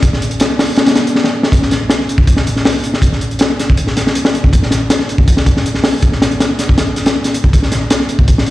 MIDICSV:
0, 0, Header, 1, 2, 480
1, 0, Start_track
1, 0, Tempo, 375000
1, 37, Time_signature, 4, 2, 24, 8
1, 10885, End_track
2, 0, Start_track
2, 0, Title_t, "Drums"
2, 33, Note_on_c, 9, 36, 100
2, 35, Note_on_c, 9, 42, 95
2, 161, Note_off_c, 9, 36, 0
2, 163, Note_off_c, 9, 42, 0
2, 169, Note_on_c, 9, 38, 42
2, 281, Note_on_c, 9, 42, 67
2, 297, Note_off_c, 9, 38, 0
2, 397, Note_off_c, 9, 42, 0
2, 397, Note_on_c, 9, 42, 46
2, 509, Note_off_c, 9, 42, 0
2, 509, Note_on_c, 9, 42, 88
2, 526, Note_on_c, 9, 38, 107
2, 637, Note_off_c, 9, 42, 0
2, 654, Note_off_c, 9, 38, 0
2, 758, Note_on_c, 9, 38, 115
2, 759, Note_on_c, 9, 46, 77
2, 886, Note_off_c, 9, 38, 0
2, 887, Note_off_c, 9, 46, 0
2, 980, Note_on_c, 9, 42, 71
2, 992, Note_on_c, 9, 38, 111
2, 1106, Note_off_c, 9, 42, 0
2, 1106, Note_on_c, 9, 42, 85
2, 1118, Note_off_c, 9, 38, 0
2, 1118, Note_on_c, 9, 38, 114
2, 1222, Note_off_c, 9, 42, 0
2, 1222, Note_on_c, 9, 42, 80
2, 1224, Note_off_c, 9, 38, 0
2, 1224, Note_on_c, 9, 38, 117
2, 1350, Note_off_c, 9, 42, 0
2, 1352, Note_off_c, 9, 38, 0
2, 1370, Note_on_c, 9, 42, 66
2, 1478, Note_on_c, 9, 38, 64
2, 1498, Note_off_c, 9, 42, 0
2, 1589, Note_off_c, 9, 38, 0
2, 1589, Note_on_c, 9, 38, 60
2, 1717, Note_off_c, 9, 38, 0
2, 1835, Note_on_c, 9, 38, 77
2, 1947, Note_on_c, 9, 36, 98
2, 1957, Note_on_c, 9, 42, 80
2, 1963, Note_off_c, 9, 38, 0
2, 2075, Note_off_c, 9, 36, 0
2, 2078, Note_on_c, 9, 38, 43
2, 2085, Note_off_c, 9, 42, 0
2, 2191, Note_on_c, 9, 42, 71
2, 2199, Note_off_c, 9, 38, 0
2, 2199, Note_on_c, 9, 38, 44
2, 2319, Note_off_c, 9, 42, 0
2, 2327, Note_off_c, 9, 38, 0
2, 2426, Note_on_c, 9, 38, 115
2, 2439, Note_on_c, 9, 42, 85
2, 2554, Note_off_c, 9, 38, 0
2, 2562, Note_on_c, 9, 38, 34
2, 2567, Note_off_c, 9, 42, 0
2, 2677, Note_on_c, 9, 42, 68
2, 2690, Note_off_c, 9, 38, 0
2, 2790, Note_on_c, 9, 36, 99
2, 2805, Note_off_c, 9, 42, 0
2, 2910, Note_on_c, 9, 42, 84
2, 2912, Note_off_c, 9, 36, 0
2, 2912, Note_on_c, 9, 36, 114
2, 3028, Note_on_c, 9, 38, 55
2, 3038, Note_off_c, 9, 42, 0
2, 3040, Note_off_c, 9, 36, 0
2, 3156, Note_off_c, 9, 38, 0
2, 3161, Note_on_c, 9, 42, 67
2, 3281, Note_on_c, 9, 38, 37
2, 3289, Note_off_c, 9, 42, 0
2, 3392, Note_on_c, 9, 46, 86
2, 3397, Note_off_c, 9, 38, 0
2, 3397, Note_on_c, 9, 38, 114
2, 3520, Note_off_c, 9, 46, 0
2, 3525, Note_off_c, 9, 38, 0
2, 3631, Note_on_c, 9, 42, 65
2, 3758, Note_on_c, 9, 38, 48
2, 3759, Note_off_c, 9, 42, 0
2, 3863, Note_on_c, 9, 36, 102
2, 3871, Note_on_c, 9, 42, 93
2, 3886, Note_off_c, 9, 38, 0
2, 3991, Note_off_c, 9, 36, 0
2, 3999, Note_off_c, 9, 42, 0
2, 3999, Note_on_c, 9, 38, 38
2, 4112, Note_on_c, 9, 42, 65
2, 4127, Note_off_c, 9, 38, 0
2, 4239, Note_off_c, 9, 42, 0
2, 4239, Note_on_c, 9, 42, 43
2, 4339, Note_off_c, 9, 42, 0
2, 4339, Note_on_c, 9, 42, 84
2, 4364, Note_on_c, 9, 38, 121
2, 4467, Note_off_c, 9, 42, 0
2, 4492, Note_off_c, 9, 38, 0
2, 4602, Note_on_c, 9, 42, 68
2, 4605, Note_on_c, 9, 38, 45
2, 4730, Note_off_c, 9, 42, 0
2, 4732, Note_on_c, 9, 36, 103
2, 4733, Note_off_c, 9, 38, 0
2, 4830, Note_on_c, 9, 42, 87
2, 4860, Note_off_c, 9, 36, 0
2, 4953, Note_on_c, 9, 38, 43
2, 4958, Note_off_c, 9, 42, 0
2, 5078, Note_on_c, 9, 42, 71
2, 5081, Note_off_c, 9, 38, 0
2, 5082, Note_on_c, 9, 38, 54
2, 5206, Note_off_c, 9, 42, 0
2, 5209, Note_off_c, 9, 38, 0
2, 5209, Note_on_c, 9, 38, 57
2, 5316, Note_on_c, 9, 42, 90
2, 5337, Note_off_c, 9, 38, 0
2, 5439, Note_on_c, 9, 38, 108
2, 5444, Note_off_c, 9, 42, 0
2, 5565, Note_on_c, 9, 42, 62
2, 5567, Note_off_c, 9, 38, 0
2, 5683, Note_on_c, 9, 36, 85
2, 5693, Note_off_c, 9, 42, 0
2, 5796, Note_off_c, 9, 36, 0
2, 5796, Note_on_c, 9, 36, 106
2, 5801, Note_on_c, 9, 42, 99
2, 5921, Note_on_c, 9, 38, 45
2, 5924, Note_off_c, 9, 36, 0
2, 5929, Note_off_c, 9, 42, 0
2, 6025, Note_off_c, 9, 38, 0
2, 6025, Note_on_c, 9, 38, 49
2, 6042, Note_on_c, 9, 42, 66
2, 6153, Note_off_c, 9, 38, 0
2, 6170, Note_off_c, 9, 42, 0
2, 6273, Note_on_c, 9, 38, 124
2, 6273, Note_on_c, 9, 42, 97
2, 6398, Note_off_c, 9, 38, 0
2, 6398, Note_on_c, 9, 38, 37
2, 6401, Note_off_c, 9, 42, 0
2, 6517, Note_on_c, 9, 42, 70
2, 6526, Note_off_c, 9, 38, 0
2, 6634, Note_on_c, 9, 36, 109
2, 6645, Note_off_c, 9, 42, 0
2, 6755, Note_off_c, 9, 36, 0
2, 6755, Note_on_c, 9, 36, 112
2, 6755, Note_on_c, 9, 42, 88
2, 6874, Note_on_c, 9, 38, 59
2, 6883, Note_off_c, 9, 36, 0
2, 6883, Note_off_c, 9, 42, 0
2, 6993, Note_on_c, 9, 36, 97
2, 6996, Note_on_c, 9, 42, 78
2, 7002, Note_off_c, 9, 38, 0
2, 7121, Note_off_c, 9, 36, 0
2, 7124, Note_off_c, 9, 42, 0
2, 7126, Note_on_c, 9, 38, 50
2, 7243, Note_on_c, 9, 42, 67
2, 7254, Note_off_c, 9, 38, 0
2, 7352, Note_on_c, 9, 38, 37
2, 7371, Note_off_c, 9, 42, 0
2, 7471, Note_off_c, 9, 38, 0
2, 7471, Note_on_c, 9, 38, 112
2, 7473, Note_on_c, 9, 46, 70
2, 7599, Note_off_c, 9, 38, 0
2, 7601, Note_off_c, 9, 46, 0
2, 7711, Note_on_c, 9, 42, 85
2, 7713, Note_on_c, 9, 36, 109
2, 7837, Note_on_c, 9, 38, 41
2, 7839, Note_off_c, 9, 42, 0
2, 7841, Note_off_c, 9, 36, 0
2, 7959, Note_off_c, 9, 38, 0
2, 7959, Note_on_c, 9, 38, 102
2, 7965, Note_on_c, 9, 42, 87
2, 8082, Note_off_c, 9, 42, 0
2, 8082, Note_on_c, 9, 42, 45
2, 8087, Note_off_c, 9, 38, 0
2, 8197, Note_on_c, 9, 38, 112
2, 8198, Note_off_c, 9, 42, 0
2, 8198, Note_on_c, 9, 42, 84
2, 8325, Note_off_c, 9, 38, 0
2, 8326, Note_off_c, 9, 42, 0
2, 8434, Note_on_c, 9, 42, 70
2, 8437, Note_on_c, 9, 38, 49
2, 8562, Note_off_c, 9, 42, 0
2, 8565, Note_off_c, 9, 38, 0
2, 8566, Note_on_c, 9, 36, 91
2, 8674, Note_on_c, 9, 38, 100
2, 8675, Note_on_c, 9, 42, 79
2, 8694, Note_off_c, 9, 36, 0
2, 8802, Note_off_c, 9, 38, 0
2, 8803, Note_off_c, 9, 42, 0
2, 8912, Note_on_c, 9, 42, 58
2, 8916, Note_on_c, 9, 38, 37
2, 9035, Note_off_c, 9, 42, 0
2, 9035, Note_on_c, 9, 42, 82
2, 9042, Note_off_c, 9, 38, 0
2, 9042, Note_on_c, 9, 38, 112
2, 9163, Note_off_c, 9, 42, 0
2, 9170, Note_off_c, 9, 38, 0
2, 9271, Note_on_c, 9, 42, 66
2, 9280, Note_on_c, 9, 38, 39
2, 9399, Note_off_c, 9, 42, 0
2, 9401, Note_on_c, 9, 42, 66
2, 9408, Note_off_c, 9, 38, 0
2, 9523, Note_on_c, 9, 36, 87
2, 9529, Note_off_c, 9, 42, 0
2, 9642, Note_off_c, 9, 36, 0
2, 9642, Note_on_c, 9, 36, 114
2, 9644, Note_on_c, 9, 42, 82
2, 9759, Note_on_c, 9, 38, 47
2, 9770, Note_off_c, 9, 36, 0
2, 9772, Note_off_c, 9, 42, 0
2, 9878, Note_off_c, 9, 38, 0
2, 9878, Note_on_c, 9, 38, 49
2, 9878, Note_on_c, 9, 42, 67
2, 10006, Note_off_c, 9, 38, 0
2, 10006, Note_off_c, 9, 42, 0
2, 10117, Note_on_c, 9, 42, 98
2, 10121, Note_on_c, 9, 38, 124
2, 10243, Note_off_c, 9, 38, 0
2, 10243, Note_on_c, 9, 38, 38
2, 10245, Note_off_c, 9, 42, 0
2, 10354, Note_on_c, 9, 42, 70
2, 10371, Note_off_c, 9, 38, 0
2, 10481, Note_on_c, 9, 36, 101
2, 10482, Note_off_c, 9, 42, 0
2, 10595, Note_on_c, 9, 42, 88
2, 10597, Note_off_c, 9, 36, 0
2, 10597, Note_on_c, 9, 36, 105
2, 10723, Note_off_c, 9, 42, 0
2, 10725, Note_off_c, 9, 36, 0
2, 10730, Note_on_c, 9, 38, 60
2, 10834, Note_on_c, 9, 42, 72
2, 10858, Note_off_c, 9, 38, 0
2, 10885, Note_off_c, 9, 42, 0
2, 10885, End_track
0, 0, End_of_file